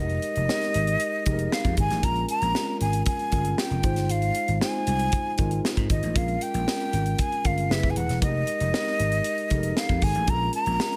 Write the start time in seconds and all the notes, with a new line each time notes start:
Already playing: F1 G#3 D#4 G4 A#4
0.00 D#5
0.10 closed hi-hat
0.22 closed hi-hat
0.36 F1, closed hi-hat
0.48 G#3 D#4 G4 A#4, snare
0.62 snare, closed hi-hat
0.74 G#1, closed hi-hat
0.87 closed hi-hat
1.00 closed hi-hat
1.26 F1 G#3 D#4 G4 G#4, kick, closed hi-hat
1.33 A#4
1.39 closed hi-hat
1.52 F5, snare
1.65 F2, kick, closed hi-hat
1.77 G#1 G#5, kick, closed hi-hat
1.90 A1, snare, closed hi-hat
2.02 A#1 G#3 C#4 F4 A#4 A#5, kick, closed hi-hat
2.16 closed hi-hat
2.29 A#5, closed hi-hat
2.42 A#1, closed hi-hat
2.54 G#3 C#4 F4 A#4, snare
2.81 G#1 G#5, closed hi-hat
2.93 closed hi-hat
3.06 G#5, kick, closed hi-hat
3.19 closed hi-hat
3.31 G1 G#3 C#4 F4 A#4, kick, closed hi-hat
3.45 closed hi-hat
3.58 G5, snare
3.71 F1, closed hi-hat
3.83 G#1 G#3 D#4 F4 C5, kick, closed hi-hat
3.96 G1, snare, closed hi-hat
4.09 G#1 F5, closed hi-hat
4.22 closed hi-hat
4.35 closed hi-hat
4.48 G#1, closed hi-hat
4.61 G#3 D#4 F4 C5 G#5, snare
4.87 C2, closed hi-hat
4.99 closed hi-hat
5.12 kick, closed hi-hat
5.38 G#1 G#3 D#4 F4 A#4, kick, closed hi-hat
5.51 closed hi-hat
5.65 snare
5.77 G#2, kick, closed hi-hat
5.90 G#1 D#5, kick, closed hi-hat
6.03 A1, closed hi-hat
6.15 A#1 G#3 C#4 F4 A#4 F5, kick, closed hi-hat
6.28 closed hi-hat
6.41 G5, closed hi-hat
6.54 A#1, closed hi-hat
6.67 G#3 C#4 F4 A#4, snare
6.80 closed hi-hat
6.93 G#1, closed hi-hat
7.06 closed hi-hat
7.19 G#5, kick, closed hi-hat
7.32 closed hi-hat
7.44 G1 G#3 C#4 F4 A#4 F5, kick, closed hi-hat
7.58 closed hi-hat
7.69 F#1 A3 E4 G#4 B4 E5, snare
7.83 F#1, kick
7.90 G#5
7.96 D#1 F#5, closed hi-hat
8.09 E1, snare, closed hi-hat
8.21 F1 G#3 D#4 G4 A#4 D#5, kick, closed hi-hat
8.47 closed hi-hat
8.60 F1, closed hi-hat
8.73 G#3 D#4 G4 A#4, snare
8.87 snare
8.99 G#1, closed hi-hat
9.12 closed hi-hat
9.24 closed hi-hat
9.38 closed hi-hat
9.50 F1 G#3 D#4 G4 A4, kick, closed hi-hat
9.57 A#4
9.63 closed hi-hat
9.77 F5, snare
9.89 F2, kick, closed hi-hat
10.02 G#1 G#5, kick, open hi-hat
10.15 A1, closed hi-hat
10.27 A#1 G#3 C#4 F4 A4 A#5, kick, closed hi-hat
10.35 A#4
10.53 A#5, closed hi-hat
10.66 A#1, closed hi-hat
10.79 G#3 C#4 F4 A#4, snare
10.93 closed hi-hat